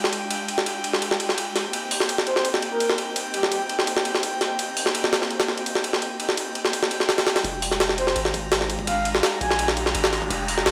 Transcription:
Already playing: string section G#3 D4 F4 G4, synth texture G5 G6
0.04 snare
0.13 ride
0.31 ride
0.48 ride
0.58 snare
0.66 ride
0.84 ride
0.93 snare
1.02 ride
1.11 snare
1.20 ride
1.29 snare
1.38 ride
1.56 snare, ride
1.73 string section A#3 C4 D#4, ride
1.91 open hi-hat
2.00 snare
2.09 ride
2.18 snare
2.27 soft synth lead C5, ride
2.36 snare
2.45 ride
2.54 snare
2.62 ride
2.72 soft synth lead A#4
2.80 ride
2.90 snare
2.98 ride
3.16 ride
3.34 soft synth lead G4, ride
3.43 snare
3.52 ride
3.69 ride
3.79 snare
3.87 ride
3.97 snare
4.05 ride
4.15 snare
4.23 ride
4.41 snare, ride
4.59 ride
4.77 open hi-hat
4.86 snare
4.95 ride
5.04 snare
5.13 snare, ride
5.22 snare
5.31 ride
5.40 snare, ride
5.48 snare
5.58 ride
5.66 ride
5.75 snare
5.84 ride
5.93 snare
6.02 ride
6.20 ride
6.29 snare
6.37 ride
6.55 ride
6.65 snare
6.73 ride
6.83 snare
6.91 ride
7.00 snare
7.09 snare, ride
7.18 snare, ride
7.27 snare, ride
7.36 snare, ride
7.44 808-style bass F1, string section G#3 D4 F4 G4, synth texture A#5 A#6, kick, ride, riser
7.62 open hi-hat
7.71 snare
7.80 snare, ride
7.89 snare
7.98 soft synth lead C5, ride
8.07 snare
8.16 808-style bass G#1, ride
8.25 snare
8.34 kick, ride
8.52 snare, ride
8.61 snare
8.70 ride
8.79 kick
8.87 soft synth lead F5, kick, ride
9.05 ride
9.15 snare
9.23 snare, ride
9.41 808-style bass A#1, soft synth lead G#5, kick, ride
9.51 snare
9.59 ride
9.68 snare
9.77 ride
9.86 snare
9.95 808-style bass G#1, ride
10.04 snare
10.13 snare, ride
10.22 kick
10.30 808-style bass F1, kick, ride
10.48 open hi-hat
10.58 snare
10.66 808-style bass G1, snare, ride

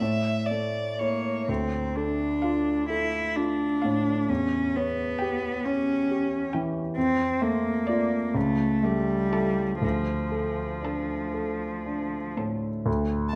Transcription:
Already playing: violin E5
0.01 grand piano A2
0.46 violin D5
0.51 grand piano A3
0.99 cello A#3, grand piano E4 C#5, violin C#5
1.49 grand piano D2, cello C4
1.96 cello D4, grand piano A4
2.42 grand piano F4, violin F5
2.89 cello E4, grand piano A4
3.36 cello D4, grand piano F4
3.82 grand piano A2, violin F5
4.29 grand piano E2, cello C#4
4.76 cello B3, grand piano C#5
5.19 grand piano G4, violin G5
5.65 cello C#4, grand piano C#5
6.11 grand piano G4
6.53 grand piano E3, violin G5
6.97 grand piano F2, cello C4
7.41 grand piano A3, cello A#3
7.86 grand piano F4 D5, violin D5
8.35 grand piano C#2, cello A3
8.83 cello G3, grand piano A3
9.32 grand piano E4 A4, violin A4
9.82 grand piano D2, cello F3
10.32 grand piano A4
10.82 grand piano D4, violin A4
11.34 grand piano A4
11.86 grand piano D4
12.37 grand piano A2, violin A4
12.86 grand piano D2

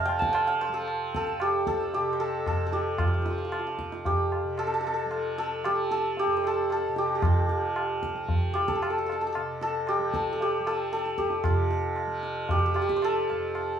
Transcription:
Already playing: tanpura F2 C3 F3, santur G4 A4 C5 F5
0.05 tanpura F3, santur G5, tabla na
0.19 santur A5, tabla ke
0.33 santur G5, tabla na
0.47 santur F5
0.61 santur C5, tabla na
0.69 tanpura F3
0.74 santur A4
0.88 tabla na
1.15 santur A4, tabla ke
1.27 tanpura F2, tabla te
1.40 santur G4, tabla na
1.67 santur A4, tabla ke
1.81 tabla te
1.94 tanpura C3, santur G4, tabla tin
2.13 santur C5
2.20 santur A4, tabla na
2.46 santur A4, tabla na, tabla ge
2.58 tanpura F3
2.67 santur A4
2.72 santur G4, tabla te
2.98 santur F4, tabla na, tabla ge
3.07 santur F4
3.14 tanpura F3, santur F4
3.22 santur F4, tabla te
3.30 santur F4
3.38 santur F4
3.45 santur F4
3.52 santur F4, tabla na
3.59 santur F4
3.67 santur F4
3.79 tanpura F2, tabla ke
3.92 tabla te
4.05 santur G4, tabla tin, tabla ge
4.32 tabla na
4.44 tanpura C3
4.58 santur A4, tabla na
4.67 santur A4
4.74 santur A4
4.81 santur A4, tabla na
4.87 santur A4
4.94 santur A4
5.05 tanpura F3
5.11 tabla na
5.38 santur A4, tabla te
5.64 tanpura F3, santur G4, tabla na
5.91 santur A4, tabla te
6.17 santur G4, tabla tin
6.27 tanpura F2
6.37 santur C5
6.44 santur A4, tabla na
6.70 santur A4, tabla na
6.88 tanpura C3
6.96 santur G4, tabla te
7.15 santur G4
7.22 santur F4, tabla na, tabla ge
7.49 tanpura F3, tabla te
7.76 tabla na
8.03 tabla ke
8.13 tanpura F3, tabla te
8.28 tabla tin, tabla ge
8.54 santur G4, tabla na
8.68 santur A4, tabla ke
8.75 tanpura F2, santur A4
8.82 santur A4, tabla na
8.90 santur A4
8.98 santur A4
9.06 santur A4, tabla na
9.12 santur A4
9.21 santur A4
9.27 santur A4
9.33 tanpura C3, santur A4, tabla na
9.61 santur A4, tabla te
9.87 santur G4, tabla na
9.99 tanpura F3
10.14 santur A4, tabla ke
10.28 tabla te
10.33 santur A4
10.41 santur G4, tabla tin
10.60 tanpura F3
10.67 santur A4, tabla na
10.93 santur A4, tabla te
11.06 tabla te
11.18 tanpura F2, santur G4, tabla ke
11.30 tabla te
11.44 tanpura C3, santur F4, tabla na, tabla ge
11.71 tabla te
11.96 tabla na
12.06 tanpura F3
12.23 tabla te
12.49 santur G4, tabla tin, tabla ge
12.59 santur G4
12.66 tanpura F3, santur G4
12.74 santur G4, tabla na
12.82 santur G4
12.89 santur G4, tabla ke
12.96 santur C5
13.02 santur A4, tabla na
13.30 tanpura F2, tabla na
13.55 tabla na

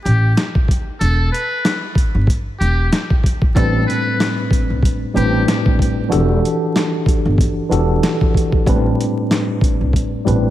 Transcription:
0.04 upright bass A1, muted trumpet G4, closed hi-hat
0.37 snare, closed hi-hat
0.55 kick
0.68 kick, closed hi-hat
1.00 upright bass E1, muted trumpet A4, closed hi-hat
1.32 muted trumpet B4, closed hi-hat
1.65 snare, closed hi-hat
1.95 kick, closed hi-hat
2.15 upright bass G1
2.27 kick, closed hi-hat
2.59 upright bass E1, muted trumpet G4, closed hi-hat
2.93 snare, closed hi-hat
3.10 kick
3.24 kick, closed hi-hat
3.42 kick
3.55 upright bass A1, tine electric piano A2 G3 C4 D4 B4, muted trumpet A4, kick, closed hi-hat
3.86 muted trumpet B4, closed hi-hat
4.20 snare, closed hi-hat
4.51 kick, closed hi-hat
4.70 upright bass C2
4.83 kick, closed hi-hat
5.13 upright bass A1, tine electric piano A2 G3 C4 D4 B4, muted trumpet G4, closed hi-hat
5.48 snare, closed hi-hat
5.66 kick
5.79 kick, closed hi-hat
6.08 upright bass E1, tine electric piano E3 D4 F#4 G4 A4, closed hi-hat
6.45 closed hi-hat
6.76 snare, closed hi-hat
7.06 kick, closed hi-hat
7.25 upright bass G1
7.38 kick, closed hi-hat
7.69 upright bass E1, tine electric piano E3 D4 F#4 G4 A4, closed hi-hat
8.03 snare, closed hi-hat
8.21 kick
8.34 kick, closed hi-hat
8.52 kick
8.65 upright bass A1, tine electric piano A2 G3 C4 D4 B4, kick, closed hi-hat
9.01 closed hi-hat
9.31 snare, closed hi-hat
9.61 kick, closed hi-hat
9.81 upright bass C2
9.93 kick, closed hi-hat
10.24 upright bass A1, tine electric piano A2 G3 C4 D4 B4, closed hi-hat

